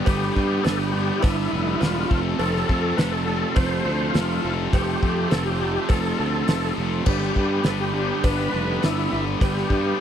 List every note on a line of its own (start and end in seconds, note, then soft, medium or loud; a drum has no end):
0.05 0.30 G1 medium
0.05 0.35 G2 medium
0.05 0.36 D3 loud
0.05 0.34 G3 loud
0.05 0.36 G3 loud
0.05 0.35 B3 loud
0.05 0.34 D4 loud
0.05 0.66 G4 medium
0.05 0.34 B4 loud
0.05 kick loud
0.05 open hi-hat medium
0.05 cowbell loud
0.22 snare soft
0.35 0.64 G2 medium
0.35 0.59 G2 medium
0.35 0.65 D3 medium
0.35 0.63 G3 medium
0.35 0.66 G3 medium
0.35 0.64 B3 medium
0.35 0.63 D4 loud
0.35 0.64 B4 loud
0.35 kick medium
0.63 1.10 G1 medium
0.63 0.94 G2 loud
0.63 0.95 D3 loud
0.63 0.91 G3 loud
0.63 0.96 G3 loud
0.63 0.92 B3 medium
0.63 0.93 D4 medium
0.63 0.79 A4 medium
0.63 0.92 B4 loud
0.63 snare loud
0.63 open hi-hat medium
0.63 cowbell medium
0.77 0.91 G4 medium
0.92 1.23 G2 medium
0.92 1.22 G3 medium
0.92 1.23 B3 medium
0.92 1.22 D4 medium
0.92 1.23 G4 medium
0.92 1.22 B4 medium
0.96 1.24 D3 medium
0.96 1.24 G3 medium
1.19 1.50 G3 medium
1.19 1.50 D4 medium
1.19 1.82 E4 medium
1.19 cowbell loud
1.24 1.46 G1 medium
1.24 1.52 G2 medium
1.24 1.53 D3 loud
1.24 1.54 G3 loud
1.24 1.50 B3 medium
1.24 1.50 B4 medium
1.24 kick loud
1.24 open hi-hat medium
1.51 1.75 F1 medium
1.51 1.80 G2 medium
1.51 1.81 D3 medium
1.51 1.79 G3 medium
1.51 1.80 B3 medium
1.51 1.79 D4 medium
1.51 1.80 B4 medium
1.55 1.82 G3 medium
1.80 2.04 E1 medium
1.80 2.09 G2 loud
1.80 2.10 D3 loud
1.80 2.08 G3 loud
1.80 2.10 G3 loud
1.80 2.09 B3 loud
1.80 2.09 D4 medium
1.80 2.22 F4 medium
1.80 2.09 B4 loud
1.80 snare loud
1.80 open hi-hat medium
1.80 cowbell medium
2.09 2.34 F1 medium
2.09 2.39 F2 loud
2.09 2.38 C3 loud
2.09 2.38 F3 loud
2.09 2.40 F3 loud
2.09 2.39 A3 loud
2.09 2.39 C4 loud
2.09 2.39 F4 loud
2.09 2.40 A4 loud
2.09 kick loud
2.39 2.62 F1 medium
2.39 2.68 F2 medium
2.39 2.68 C3 medium
2.39 2.67 F3 loud
2.39 2.70 F3 medium
2.39 2.68 A3 loud
2.39 2.68 C4 loud
2.39 2.68 F4 loud
2.39 3.00 A4 loud
2.39 2.69 A4 loud
2.39 open hi-hat medium
2.39 cowbell medium
2.56 snare soft
2.67 2.96 F2 medium
2.67 2.92 F2 medium
2.67 2.96 C3 medium
2.67 2.97 F3 medium
2.67 2.98 F3 medium
2.67 2.98 A3 medium
2.67 2.98 C4 medium
2.67 2.98 F4 loud
2.67 2.99 A4 medium
2.67 kick medium
2.96 3.43 F1 medium
2.96 3.26 F2 loud
2.96 3.26 C3 loud
2.96 3.26 F3 medium
2.96 3.27 F3 loud
2.96 3.26 A3 medium
2.96 3.26 C4 loud
2.96 3.27 F4 loud
2.96 3.27 A4 loud
2.96 3.13 B4 loud
2.96 snare loud
2.96 open hi-hat medium
2.96 cowbell medium
3.11 3.23 A4 medium
3.24 3.55 F2 medium
3.24 3.55 C3 medium
3.24 3.54 F3 medium
3.24 3.56 F3 medium
3.24 3.54 A3 medium
3.24 3.54 C4 medium
3.24 3.55 F4 medium
3.24 3.56 A4 loud
3.24 3.55 A4 loud
3.55 3.79 F1 loud
3.55 3.84 F2 medium
3.55 3.84 C3 loud
3.55 3.83 F3 loud
3.55 3.85 F3 loud
3.55 3.84 A3 medium
3.55 3.84 C4 medium
3.55 3.85 F4 medium
3.55 3.85 A4 medium
3.55 4.16 C5 loud
3.55 kick loud
3.55 open hi-hat medium
3.55 cowbell loud
3.84 4.08 D2 medium
3.84 4.13 F2 medium
3.84 4.14 C3 medium
3.84 4.12 F3 medium
3.84 4.15 F3 medium
3.84 4.13 A3 medium
3.84 4.13 C4 medium
3.84 4.13 F4 medium
3.84 4.14 A4 medium
4.11 4.37 F1 medium
4.11 4.44 F2 medium
4.11 4.42 F3 loud
4.11 4.43 A3 loud
4.11 4.43 C4 loud
4.11 4.54 F4 medium
4.11 4.43 F4 loud
4.11 open hi-hat medium
4.15 4.45 C3 loud
4.15 4.45 F3 loud
4.15 4.44 A4 loud
4.15 snare loud
4.15 cowbell medium
4.44 4.67 F1 medium
4.44 4.73 F2 medium
4.44 4.73 C3 medium
4.44 4.71 F3 medium
4.44 4.74 F3 medium
4.44 4.72 A3 medium
4.44 4.72 C4 loud
4.44 4.72 F4 medium
4.44 4.73 A4 medium
4.72 4.96 F1 medium
4.72 5.01 F2 medium
4.72 5.01 C3 medium
4.72 5.00 F3 medium
4.72 5.02 F3 loud
4.72 5.01 A3 loud
4.72 5.01 C4 loud
4.72 5.01 F4 loud
4.72 5.34 G4 medium
4.72 5.02 A4 loud
4.72 kick loud
4.72 open hi-hat medium
4.72 cowbell medium
5.02 5.31 F2 medium
5.02 5.25 F2 medium
5.02 5.31 C3 medium
5.02 5.28 F3 medium
5.02 5.32 F3 medium
5.02 5.28 A3 medium
5.02 5.28 C4 medium
5.02 5.28 F4 medium
5.02 5.29 A4 medium
5.02 kick medium
5.29 5.77 F1 medium
5.29 5.60 F2 medium
5.29 5.61 C3 loud
5.29 5.58 F3 medium
5.29 5.59 A3 medium
5.29 5.59 C4 medium
5.29 5.60 F4 medium
5.29 5.60 A4 loud
5.29 5.45 A4 loud
5.29 snare loud
5.29 open hi-hat medium
5.29 cowbell medium
5.33 5.61 F3 loud
5.45 5.91 G4 loud
5.59 5.88 F2 medium
5.59 5.89 C3 medium
5.59 5.88 F3 medium
5.59 5.90 F3 medium
5.59 5.88 A3 medium
5.59 5.88 C4 medium
5.59 5.89 F4 medium
5.59 5.89 A4 medium
5.89 6.13 F1 medium
5.89 6.19 F2 loud
5.89 6.19 C3 loud
5.89 6.17 F3 medium
5.89 6.20 F3 loud
5.89 6.17 A3 medium
5.89 6.18 C4 medium
5.89 6.18 F4 loud
5.89 6.17 A4 medium
5.89 6.18 A4 loud
5.89 kick loud
5.89 open hi-hat medium
5.89 cowbell medium
6.18 6.42 D2 medium
6.18 6.47 F2 medium
6.18 6.47 C3 medium
6.18 6.46 F3 medium
6.18 6.48 F3 loud
6.18 6.46 A3 medium
6.18 6.47 C4 medium
6.18 6.47 F4 medium
6.18 6.74 A4 loud
6.18 6.48 A4 medium
6.47 6.71 F1 medium
6.47 6.77 F2 medium
6.47 6.78 C3 medium
6.47 6.74 F3 loud
6.47 6.79 F3 loud
6.47 6.75 A3 loud
6.47 6.76 C4 loud
6.47 6.76 F4 loud
6.47 6.76 A4 loud
6.47 snare loud
6.47 open hi-hat medium
6.47 cowbell medium
6.76 7.00 F1 medium
6.76 7.06 F2 medium
6.76 7.06 C3 medium
6.76 7.04 F3 medium
6.76 7.04 A3 medium
6.76 7.05 C4 medium
6.76 7.05 F4 loud
6.76 7.05 A4 loud
6.80 7.07 F3 medium
7.06 7.29 G1 medium
7.06 7.35 G2 medium
7.06 7.35 D3 loud
7.06 7.35 G3 medium
7.06 7.36 G3 medium
7.06 7.36 B3 loud
7.06 7.36 D4 loud
7.06 7.67 G4 medium
7.06 7.36 B4 loud
7.06 kick loud
7.06 cowbell medium
7.06 crash loud
7.22 snare soft
7.35 7.64 G2 medium
7.35 7.59 G2 medium
7.35 7.64 D3 medium
7.35 7.64 G3 medium
7.35 7.65 G3 medium
7.35 7.65 B3 medium
7.35 7.65 D4 medium
7.35 7.66 B4 loud
7.35 kick medium
7.64 8.11 G1 medium
7.64 7.92 G2 medium
7.64 7.93 D3 loud
7.64 7.92 G3 medium
7.64 7.94 G3 medium
7.64 7.93 B3 loud
7.64 7.93 D4 medium
7.64 7.72 A4 medium
7.64 7.93 B4 loud
7.64 snare loud
7.64 open hi-hat medium
7.64 cowbell medium
7.81 7.94 G4 medium
7.93 8.22 G2 medium
7.93 8.23 D3 medium
7.93 8.22 G3 medium
7.93 8.23 G3 loud
7.93 8.22 B3 medium
7.93 8.22 D4 medium
7.93 8.25 G4 medium
7.93 8.23 B4 medium
8.23 8.46 G1 loud
8.23 8.51 G2 medium
8.23 8.51 D3 loud
8.23 8.51 G3 medium
8.23 8.52 G3 loud
8.23 8.52 B3 loud
8.23 8.51 D4 loud
8.23 8.52 B4 loud
8.23 8.85 B4 medium
8.23 kick loud
8.23 open hi-hat medium
8.23 cowbell loud
8.52 8.76 F1 medium
8.52 8.80 G2 medium
8.52 8.81 D3 medium
8.52 8.80 G3 medium
8.52 8.81 G3 loud
8.52 8.80 B3 medium
8.52 8.80 D4 medium
8.52 8.81 B4 medium
8.81 9.06 G1 medium
8.81 9.11 G2 medium
8.81 9.11 D3 medium
8.81 9.10 G3 medium
8.81 9.12 G3 loud
8.81 9.10 B3 loud
8.81 9.10 D4 loud
8.81 9.11 B4 loud
8.81 snare loud
8.81 open hi-hat medium
8.81 cowbell medium
8.85 9.25 E4 medium
9.11 9.35 G1 medium
9.11 9.40 G2 medium
9.11 9.41 D3 medium
9.11 9.38 G3 medium
9.11 9.41 G3 medium
9.11 9.39 B3 medium
9.11 9.39 D4 medium
9.11 9.39 B4 loud
9.40 9.64 G1 medium
9.40 9.69 G2 medium
9.40 9.70 D3 loud
9.40 9.70 G3 medium
9.40 9.70 G3 loud
9.40 9.70 B3 loud
9.40 9.70 D4 loud
9.40 10.00 G4 medium
9.40 9.71 B4 loud
9.40 kick loud
9.40 open hi-hat medium
9.40 cowbell loud
9.57 snare soft
9.70 9.97 G2 medium
9.70 9.93 G2 medium
9.70 9.98 D3 medium
9.70 9.98 G3 medium
9.70 9.99 G3 medium
9.70 9.99 B3 medium
9.70 9.98 D4 loud
9.70 9.99 B4 loud
9.70 kick medium